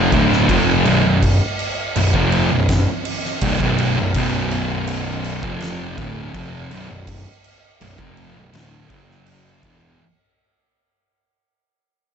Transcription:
Already playing: distorted electric guitar F2 C3 F3
0.12 picked electric bass D1, distorted electric guitar D2 A2 D3, kick, crash
0.33 snare
0.49 picked electric bass F1, distorted electric guitar F2 C3 F3, kick, crash
0.85 picked electric bass B0, distorted electric guitar B1 F#2, crash
1.05 picked electric bass B0, distorted electric guitar B1 F#2
1.23 kick, crash
1.59 crash
1.96 picked electric bass B0, distorted electric guitar B1 F#2, crash
2.14 picked electric bass F1, distorted electric guitar F2 C3 F3, kick
2.32 crash
2.52 picked electric bass B0, distorted electric guitar B1 F#2
2.69 kick, snare, crash
3.05 crash
3.25 snare
3.41 picked electric bass C1, distorted electric guitar C2 G2, kick, crash
3.60 picked electric bass B0, distorted electric guitar B1 F#2 B2, kick
3.78 crash
3.98 picked electric bass B0, distorted electric guitar B1 F#2
4.14 picked electric bass B0, distorted electric guitar B1 F#2 B2, kick, crash
4.51 crash
4.87 crash
5.24 crash
5.43 picked electric bass F1, distorted electric guitar F2 C3 F3, kick
5.60 snare, crash
5.98 picked electric bass D1, distorted electric guitar D2 A2 D3, kick, crash
6.34 picked electric bass F1, distorted electric guitar F2 C3 F3, kick, crash
6.71 picked electric bass B0, distorted electric guitar B1 F#2, crash
6.90 picked electric bass B0, distorted electric guitar B1 F#2
7.07 kick, crash
7.44 crash
7.81 picked electric bass B0, distorted electric guitar B1 F#2, crash
7.99 picked electric bass F1, distorted electric guitar F2 C3 F3, kick
8.17 crash
8.36 picked electric bass B0, distorted electric guitar B1 F#2
8.53 picked electric bass D1, distorted electric guitar D2 A2 D3, snare, crash
8.90 picked electric bass F#1, distorted electric guitar F#2 C#3 F#3, kick, crash
9.11 snare
9.26 crash
9.63 picked electric bass E1, distorted electric guitar E2 B2 E3, kick, crash

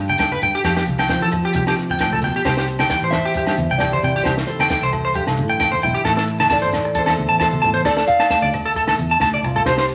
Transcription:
Already playing: fingered electric bass G2, nylon-string guitar G2 D3 G3 G4
0.08 clean electric guitar G5, high conga, maracas
0.18 fingered electric bass G2, nylon-string guitar D3, clean electric guitar G5, kick, snare, low agogo, maracas
0.31 clean electric guitar B4, high conga, maracas
0.42 fingered electric bass G2, nylon-string guitar D4, clean electric guitar G5, low conga, maracas
0.54 clean electric guitar G4, maracas
0.64 nylon-string guitar F2, fingered electric bass F2, clean electric guitar G4, kick, snare, low agogo, maracas
0.75 clean electric guitar G4, snare, maracas
0.86 fingered electric bass C2, nylon-string guitar G3, high conga, maracas
0.98 clean electric guitar G5, snare, low agogo, maracas
1.08 nylon-string guitar F3 C4, clean electric guitar G5, kick, snare, maracas
1.20 fingered electric bass F3, clean electric guitar A4, maracas
1.31 high conga, low conga, low agogo, maracas
1.43 clean electric guitar G4, maracas
1.53 fingered electric bass C2, nylon-string guitar C3, clean electric guitar G4, kick, high conga, maracas
1.66 clean electric guitar G4, snare, low agogo, maracas
1.76 nylon-string guitar G4, snare, maracas
1.90 clean electric guitar G5, high conga, low conga
1.99 nylon-string guitar A2, clean electric guitar G5, kick, snare, low agogo, maracas
2.12 fingered electric bass C#2, clean electric guitar A4, high conga
2.22 nylon-string guitar B2, clean electric guitar G5, snare, low conga, maracas
2.34 clean electric guitar G4, maracas
2.44 fingered electric bass C2, nylon-string guitar C3, clean electric guitar G4, steel-string acoustic guitar G4 C5, kick, snare, low agogo, maracas
2.57 clean electric guitar G4, snare, maracas
2.68 maracas
2.79 clean electric guitar G5, snare, high conga, low agogo
2.90 nylon-string guitar E3, clean electric guitar G5, kick, snare, maracas
3.02 fingered electric bass A1, clean electric guitar C5, maracas
3.10 steel-string acoustic guitar C5 E5, snare, low conga, low agogo, maracas
3.24 clean electric guitar G4, maracas
3.34 nylon-string guitar G2, clean electric guitar G4, kick, maracas
3.47 fingered electric bass G2, clean electric guitar G4, snare, low agogo, maracas
3.57 fingered electric bass E2, high conga, maracas
3.70 fingered electric bass C2, clean electric guitar G5
3.78 nylon-string guitar E3, steel-string acoustic guitar G4 D5, clean electric guitar G5, kick, snare, low agogo, maracas
3.92 clean electric guitar C5, high conga, maracas
4.03 fingered electric bass C3, nylon-string guitar E4, clean electric guitar G5, low conga, maracas
4.15 fingered electric bass C2, clean electric guitar G4, maracas
4.24 fingered electric bass C2, nylon-string guitar C3, steel-string acoustic guitar G4 C5, clean electric guitar G4, kick, snare, low agogo, maracas
4.37 snare, maracas
4.47 steel-string acoustic guitar A4 C5, maracas
4.59 clean electric guitar G5, snare, high conga, low agogo
4.70 nylon-string guitar E3, clean electric guitar G5, kick, snare, maracas
4.82 fingered electric bass C2, clean electric guitar C5, maracas
4.93 low conga, low agogo, maracas
5.05 clean electric guitar C5, maracas
5.14 nylon-string guitar G2, clean electric guitar G4, kick, maracas
5.26 fingered electric bass C2, snare, low agogo, maracas
5.37 fingered electric bass A2, high conga, maracas
5.50 clean electric guitar G5
5.60 nylon-string guitar E3, clean electric guitar G5, kick, snare, low agogo, maracas
5.72 clean electric guitar C5, high conga, maracas
5.82 fingered electric bass B1, nylon-string guitar E4, clean electric guitar G5, low conga, maracas
5.95 clean electric guitar G4, maracas
6.04 fingered electric bass A1, nylon-string guitar A2, clean electric guitar A4, kick, snare, low agogo, maracas
6.17 clean electric guitar A4, snare, maracas
6.28 maracas
6.40 clean electric guitar A5, snare, high conga, low agogo
6.50 nylon-string guitar E3, steel-string acoustic guitar A4 D5, clean electric guitar A5, kick, snare, maracas
6.62 fingered electric bass G1, clean electric guitar C5, maracas
6.72 snare, low conga, low agogo, maracas
6.84 muted clean electric guitar stroke, maracas
6.95 nylon-string guitar E2, clean electric guitar A4, steel-string acoustic guitar A4, kick, maracas
6.99 steel-string acoustic guitar C5
7.06 fingered electric bass E2, clean electric guitar A4, snare, low agogo, maracas
7.18 fingered electric bass D2, high conga, maracas
7.29 fingered electric bass A1, clean electric guitar A5
7.40 nylon-string guitar B2, steel-string acoustic guitar A4 C5, clean electric guitar A5, kick, snare, low agogo, maracas
7.53 high conga
7.62 fingered electric bass A2, nylon-string guitar C3, clean electric guitar A5, low conga, maracas
7.74 fingered electric bass A1, clean electric guitar C5, maracas
7.85 fingered electric bass D2, clean electric guitar A4, steel-string acoustic guitar A4 D5, muted nylon-string guitar stroke, kick, snare, low agogo, maracas
7.97 clean electric guitar A4, snare
8.07 steel-string acoustic guitar D5 F5, low conga, maracas
8.19 clean electric guitar A5, snare, low agogo
8.30 nylon-string guitar A3, clean electric guitar A5, kick, snare, maracas
8.42 fingered electric bass D2, clean electric guitar D5, high conga, maracas
8.53 low conga, low agogo, maracas
8.65 clean electric guitar A4, maracas
8.76 nylon-string guitar A2, clean electric guitar A4, kick, maracas
8.87 fingered electric bass D2, clean electric guitar A4, snare, low agogo
8.98 fingered electric bass E2, high conga, maracas
9.11 clean electric guitar A5, maracas
9.20 fingered electric bass D2, nylon-string guitar A3, clean electric guitar A5, kick, snare, high conga, low agogo, maracas
9.34 clean electric guitar D5, high conga, maracas
9.43 fingered electric bass C2, nylon-string guitar F4, muted clean electric guitar stroke, low conga, maracas
9.56 clean electric guitar A4, low conga
9.66 fingered electric bass C2, nylon-string guitar C3, steel-string acoustic guitar G4 C5, clean electric guitar C5, kick, snare, low agogo, maracas
9.78 clean electric guitar C5, snare, maracas
9.89 maracas

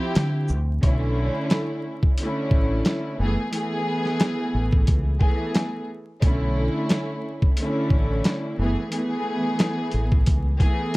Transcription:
Already playing: string section F3 C4 E4 G4
0.15 fingered electric bass D3, snare, closed hi-hat
0.48 fingered electric bass D2, shaker
0.81 fingered electric bass B1, string section D3 A3 C#4 E4, kick, closed hi-hat
1.50 snare, closed hi-hat
2.03 kick
2.18 string section D3 A3 C#4, closed hi-hat
2.22 string section E4
2.51 fingered electric bass A1, kick
2.85 snare, closed hi-hat
3.18 fingered electric bass F#1, string section E3 A3 B3 G#4
3.50 string section E3 A3 B3 G#4, closed hi-hat
4.05 snare
4.20 snare, closed hi-hat
4.54 fingered electric bass A1
4.72 kick
4.87 fingered electric bass C#2, kick, closed hi-hat
5.19 string section E3 A3 B3 G#4, kick
5.55 snare, closed hi-hat
6.21 fingered electric bass B1, string section D3 A3 C#4 E4, kick, closed hi-hat
6.89 snare, closed hi-hat
7.42 kick
7.57 string section D3 A3 C#4, closed hi-hat
7.61 string section E4
7.90 fingered electric bass A1, kick
8.24 snare, closed hi-hat
8.57 fingered electric bass F#1, string section E3 A3 B3 G#4
8.89 string section E3 A3 B3 G#4, closed hi-hat
9.59 snare, closed hi-hat
9.91 fingered electric bass A1, closed hi-hat
10.12 kick
10.26 fingered electric bass C#2, kick, closed hi-hat
10.58 string section E3 A3 B3 G#4, kick, closed hi-hat

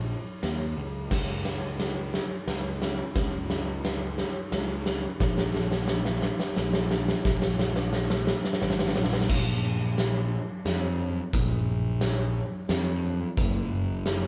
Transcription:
Already playing: picked electric bass A#1
0.43 picked electric bass D#2, snare, ride
0.77 picked electric bass C#2
1.11 picked electric bass C#2, kick, snare, crash
1.45 snare, ride
1.80 snare, ride
2.14 snare
2.47 picked electric bass C#2, snare, ride
2.82 snare
3.15 picked electric bass C#2, kick, snare, ride
3.50 snare
3.85 snare, ride
4.18 snare
4.52 picked electric bass C#2, snare, ride
4.86 snare
5.20 picked electric bass A#1, kick, snare
5.38 snare
5.55 snare
5.71 snare
5.88 snare
6.05 snare
6.22 snare
6.40 snare
6.56 picked electric bass A#1, snare
6.74 snare
6.91 snare
7.08 snare
7.25 picked electric bass A#1, kick, snare
7.42 snare
7.59 snare
7.76 snare
7.93 snare
8.10 snare
8.27 snare
8.45 snare
8.53 snare
8.62 picked electric bass G#1, snare
8.70 snare
8.79 snare
8.88 snare
8.96 picked electric bass A#1, snare
9.04 snare
9.13 snare
9.21 snare
9.30 picked electric bass A#1, kick, crash
9.98 snare, closed hi-hat
10.65 picked electric bass F2, snare, closed hi-hat
11.33 picked electric bass A#1, kick, closed hi-hat
12.01 snare, closed hi-hat
12.69 picked electric bass F2, snare, closed hi-hat
13.37 picked electric bass F#1, kick, closed hi-hat
14.06 snare, closed hi-hat

